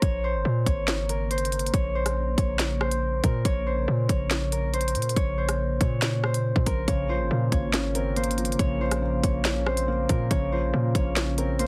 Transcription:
Already playing: harp A#4
0.02 808-style bass A#1, ambient pad C#3 A#3, harp C#5, kick, closed hi-hat
0.24 harp C5
0.34 808-style bass G#1
0.45 808-style bass A#2
0.66 808-style bass G#1, harp C#5, kick, closed hi-hat
0.88 snare, closed hi-hat
1.09 harp A#4, closed hi-hat
1.31 harp C5, closed hi-hat
1.38 closed hi-hat
1.45 closed hi-hat
1.52 closed hi-hat
1.59 closed hi-hat
1.67 closed hi-hat
1.74 808-style bass A#1, harp C#5, kick, closed hi-hat
1.95 harp C5
2.06 cross-stick, closed hi-hat
2.38 808-style bass A#1, harp C#5, kick, closed hi-hat
2.59 snare, closed hi-hat
2.81 harp C5, cross-stick
2.91 closed hi-hat
3.24 808-style bass A#2, harp A#4, kick, closed hi-hat
3.45 808-style bass A#1, harp C#5, kick, closed hi-hat
3.67 harp C5
3.88 808-style bass A#2
4.09 808-style bass A#1, harp C#5, kick, closed hi-hat
4.31 snare, closed hi-hat
4.52 harp A#4, closed hi-hat
4.74 harp C5, closed hi-hat
4.81 closed hi-hat
4.88 closed hi-hat
4.95 808-style bass A#2, closed hi-hat
5.02 closed hi-hat
5.09 closed hi-hat
5.16 808-style bass A#1, harp C#5, kick, closed hi-hat
5.38 harp C5
5.49 cross-stick, closed hi-hat
5.81 808-style bass A#2, harp C#5, kick, closed hi-hat
6.02 snare, closed hi-hat
6.24 harp C5, cross-stick
6.34 closed hi-hat
6.56 808-style bass A#2, kick
6.66 808-style bass A#1, harp A#4, kick, closed hi-hat
6.88 808-style bass A#1, felt piano C#3, ambient pad A#3, harp C#5, kick, closed hi-hat
7.09 felt piano F3, harp C5
7.20 808-style bass G#1
7.31 808-style bass A#2, felt piano A#3
7.52 808-style bass G#1, harp C#5, kick, closed hi-hat
7.73 felt piano C#4, snare, closed hi-hat
7.95 felt piano C4, harp A#4, closed hi-hat
8.16 felt piano A#3, harp C5, closed hi-hat
8.24 closed hi-hat
8.31 closed hi-hat
8.38 felt piano F3, closed hi-hat
8.45 closed hi-hat
8.52 closed hi-hat
8.59 808-style bass A#1, felt piano C#3, harp C#5, kick, closed hi-hat
8.81 felt piano F3, harp C5
8.91 cross-stick, closed hi-hat
9.02 felt piano A#3
9.24 808-style bass A#1, harp C#5, kick, closed hi-hat
9.45 felt piano C#4, snare, closed hi-hat
9.66 felt piano C4, harp C5, cross-stick
9.77 closed hi-hat
9.88 felt piano A#3
10.09 808-style bass A#2, felt piano F3, harp A#4, kick, closed hi-hat
10.31 808-style bass A#1, felt piano C#3, ambient pad C#3, harp C#5, kick, closed hi-hat
10.52 felt piano F3, harp C5
10.74 808-style bass A#2, felt piano A#3
10.95 808-style bass A#1, harp C#5, kick, closed hi-hat
11.16 felt piano C#4, snare, closed hi-hat
11.38 felt piano C4, harp A#4, closed hi-hat
11.59 felt piano A#3, harp C5, closed hi-hat

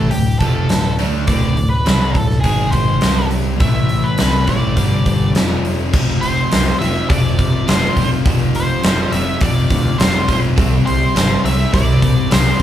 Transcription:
Already playing: overdriven electric guitar A2 E3 A3, lead electric guitar A4
0.11 picked electric bass D1, overdriven electric guitar D2 A2, lead electric guitar G4, open hi-hat
0.39 picked electric bass F1, overdriven electric guitar F2 C3 F3, lead electric guitar A4, kick, open hi-hat
0.69 picked electric bass D1, overdriven electric guitar D2 A2, snare, open hi-hat
0.99 picked electric bass D2, overdriven electric guitar D3 A3 D4, open hi-hat
1.27 picked electric bass D1, overdriven electric guitar D2 A2 D3, lead electric guitar D5, kick, open hi-hat
1.57 picked electric bass D1, overdriven electric guitar D2 A2, open hi-hat
1.70 lead electric guitar B4
1.86 picked electric bass C2, overdriven electric guitar C3 G3 C4, snare, open hi-hat
2.12 picked electric bass D1, overdriven electric guitar D2, lead electric guitar A4, kick, open hi-hat
2.16 overdriven electric guitar A2
2.31 snare
2.41 overdriven electric guitar G#2, lead electric guitar G#4, kick, open hi-hat
2.45 picked electric bass G#1, overdriven electric guitar D#3 G#3
2.71 lead electric guitar C5, kick, open hi-hat
3.01 picked electric bass C2, overdriven electric guitar C3 G3 C4, snare, open hi-hat
3.31 open hi-hat
3.59 picked electric bass A1, overdriven electric guitar A2 E3 A3, lead electric guitar E5, kick, open hi-hat
3.89 open hi-hat
4.04 lead electric guitar B4
4.18 picked electric bass C2, overdriven electric guitar C3 G3 C4, snare, open hi-hat
4.47 picked electric bass A1, overdriven electric guitar A2 E3 A3, lead electric guitar D5, kick, open hi-hat
4.77 picked electric bass G1, overdriven electric guitar G2 D3 G3, kick, open hi-hat
5.06 kick, open hi-hat
5.35 picked electric bass F1, overdriven electric guitar F2 C3 F3, snare, open hi-hat
5.65 open hi-hat
5.92 picked electric bass F1, overdriven electric guitar F2 C3 F3, kick, crash
6.21 picked electric bass F1, lead electric guitar C5, open hi-hat
6.52 picked electric bass C2, overdriven electric guitar F2 C3 F3, snare, open hi-hat
6.79 picked electric bass F1, overdriven electric guitar F2 C3 F3, lead electric guitar E5, open hi-hat
7.09 picked electric bass F1, overdriven electric guitar F2 C3 F3, lead electric guitar D5, kick, open hi-hat
7.39 kick, open hi-hat
7.68 picked electric bass F1, overdriven electric guitar F2 C3 F3, lead electric guitar C5, snare, open hi-hat
7.97 picked electric bass F1, overdriven electric guitar F2 C3 F3, kick, open hi-hat
8.26 picked electric bass F1, overdriven electric guitar F2 C3 F3, kick, open hi-hat
8.55 lead electric guitar C5, open hi-hat
8.84 picked electric bass F1, overdriven electric guitar F2 C3 F3, snare, open hi-hat
9.12 picked electric bass F1, overdriven electric guitar F2 C3 F3, lead electric guitar E5, open hi-hat
9.41 picked electric bass F1, overdriven electric guitar F2 C3 F3, lead electric guitar D5, kick, open hi-hat
9.70 picked electric bass D2, kick, open hi-hat
9.98 picked electric bass F1, overdriven electric guitar F2 C3 F3, lead electric guitar C5, snare, open hi-hat
10.28 picked electric bass F1, overdriven electric guitar F2 C3 F3, kick, open hi-hat
10.58 picked electric bass C2, overdriven electric guitar C3 G3 C4, kick, open hi-hat
10.86 picked electric bass C2, lead electric guitar C5, open hi-hat
11.15 picked electric bass G1, overdriven electric guitar C3 G3 C4, snare, open hi-hat
11.44 picked electric bass C2, overdriven electric guitar C3 G3 C4, lead electric guitar E5, open hi-hat
11.72 picked electric bass C2, overdriven electric guitar C3 G3 C4, lead electric guitar D5, kick, open hi-hat
12.02 kick, open hi-hat
12.30 picked electric bass C2, overdriven electric guitar C3 G3 C4, lead electric guitar C5, snare, open hi-hat

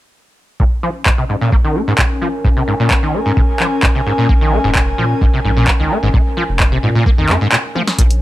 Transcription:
0.60 acid bass A#2, analog synth pad C#4, kick
0.83 acid bass F3
1.06 acid bass G#2, kick, clap
1.16 acid bass C3, analog synth pad A#4
1.29 acid bass G#2
1.41 acid bass A#2
1.52 acid bass A#3, kick
1.64 acid bass D#3
1.74 acid bass A#3, analog synth pad G#5
1.88 acid bass G#2
1.98 acid bass A#2, kick, clap
2.22 acid bass F3
2.45 acid bass G#2, kick
2.57 acid bass C3
2.68 acid bass G#2
2.80 acid bass A#2
2.91 acid bass A#3, kick, clap
3.03 acid bass D#3
3.14 acid bass A#3
3.26 acid bass G#2
3.37 acid bass A#2, kick
3.60 acid bass F3, clap
3.83 acid bass G#2, kick, clap
3.95 acid bass C3
4.06 acid bass G#2
4.18 acid bass A#2
4.29 sub bass A#1, acid bass A#3, kick
4.41 acid bass D#3
4.52 acid bass A#3
4.64 sub bass F1, acid bass G#2
4.75 acid bass A#2, kick, clap
4.98 sub bass A#2, acid bass F3
5.21 sub bass A#1, acid bass G#2, kick
5.34 acid bass C3
5.45 sub bass A#1, acid bass G#2
5.57 acid bass A#2
5.68 acid bass A#3, kick, clap
5.80 sub bass C#2, acid bass D#3
5.91 acid bass A#3
6.03 sub bass G#1, acid bass G#2
6.14 acid bass A#2, kick
6.37 acid bass F3
6.49 sub bass F1
6.60 acid bass G#2, kick, clap
6.72 acid bass C3
6.83 acid bass G#2, sub bass A#2
6.95 acid bass A#2
7.06 acid bass A#3, kick
7.18 sub bass F2, acid bass D#3
7.29 sub bass F2, acid bass A#3, clap
7.41 acid bass G#2
7.52 acid bass A#2, clap
7.75 acid bass F3, high tom
7.87 snare
7.98 sub bass A#1, acid bass A#2, ambient pad C#5, kick, closed hi-hat, cabasa
8.11 closed hi-hat

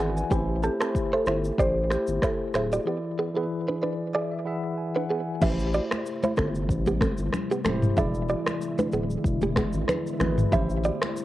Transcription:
Already playing: tine electric piano E3 E4 F#4 D5 F#5
0.00 sub bass G#1, clean electric guitar B3, tine electric piano G#4 E5 G#5, finger snap
0.16 tine electric piano B4 G#5, shaker
0.29 sub bass A1, tine electric piano A3 E4 G4 C5, clean electric guitar C4 G4, kick, shaker
0.63 clean electric guitar C4 A4, marimba G4, shaker
0.79 tine electric piano A3 E4 G4 C5, clean electric guitar C4 A4, finger snap, cross-stick, shaker
0.95 kick, shaker
1.13 clean electric guitar E4 C5, marimba A4
1.26 sub bass G1, clean electric guitar E4 C5, finger snap, cross-stick, shaker
1.44 shaker
1.58 sub bass A1, clean electric guitar G4 D5, marimba C5, kick, shaker
1.89 tine electric piano A3 E4 G4 C5, marimba G4, finger snap, cross-stick, shaker
2.07 sub bass G1, shaker
2.22 clean electric guitar E4 C5, marimba A4, finger snap, kick, cross-stick, shaker
2.54 sub bass D1, clean electric guitar E4 C5, marimba G#4, finger snap, cross-stick, shaker
2.73 clean electric guitar F#4 D5, shaker
2.85 tine electric piano E3 E4 G#4 D5, clean electric guitar B3 G4
3.19 clean electric guitar B3 G#4
3.35 tine electric piano E3 E4 G#4 B4, clean electric guitar B3 G#4
3.69 clean electric guitar D4 B4
3.82 clean electric guitar D4 B4, tine electric piano D5
4.14 clean electric guitar G#4 D5, tine electric piano E5
4.32 tine electric piano E5
4.45 tine electric piano E3 E4 G#4 E5 F#5
4.78 tine electric piano G#5
4.95 clean electric guitar D4 B4, tine electric piano F#5
5.10 clean electric guitar B3 G#4, tine electric piano G#5
5.40 sub bass A1, ambient pad C3 G3 A3 E4, tine electric piano A3 E4 G4 B4, clean electric guitar G4 E5, kick, crash, low conga, shaker
5.49 tine electric piano C5
5.59 shaker
5.73 clean electric guitar F#4 D5, shaker
5.91 finger snap, cross-stick, high conga, shaker
6.06 shaker
6.23 clean electric guitar E4 C5, high conga, shaker
6.37 sub bass G1, clean electric guitar C4 A4, finger snap, kick, cross-stick, shaker
6.55 shaker
6.69 sub bass A1, kick, shaker
6.86 clean electric guitar B3 G4, high conga, shaker
7.01 clean electric guitar C4 A4, finger snap, kick, cross-stick, high conga, shaker
7.18 sub bass G1, shaker
7.33 finger snap, cross-stick, low conga, shaker
7.51 clean electric guitar B3 G4, shaker
7.64 sub bass D1, tine electric piano A3 E4 G4 C5, clean electric guitar C4 A4, finger snap, cross-stick, high conga, low conga, shaker
7.82 mid tom, shaker
7.96 sub bass E1, ambient pad D3 G#3 B3 E4, tine electric piano E3 E4 G#4 D5, clean electric guitar G#4 E5, kick, low conga, shaker
8.14 shaker
8.29 clean electric guitar F#4 D5, shaker
8.46 finger snap, cross-stick, high conga, shaker
8.61 shaker
8.78 clean electric guitar D4 B4, high conga, shaker
8.92 sub bass D1, clean electric guitar B3 G#4, shaker
9.10 shaker
9.24 sub bass E1, kick, shaker
9.41 clean electric guitar A3 G4, high conga, shaker
9.56 clean electric guitar B3 G#4, finger snap, kick, cross-stick, high conga, shaker
9.73 sub bass G#1, shaker
9.88 clean electric guitar D4 B4, finger snap, cross-stick, low conga, shaker
10.07 shaker
10.19 sub bass G#1, tine electric piano E3 E4 G#4 B4, finger snap, cross-stick, high conga, low conga, shaker
10.38 mid tom, shaker
10.51 sub bass A1, ambient pad C3 G3 A3 E4, tine electric piano A3 E4 G4 C5, clean electric guitar G4 E5, kick, low conga, shaker
10.70 shaker
10.84 clean electric guitar F#4 D5, shaker
11.02 finger snap, cross-stick, high conga, shaker
11.17 shaker

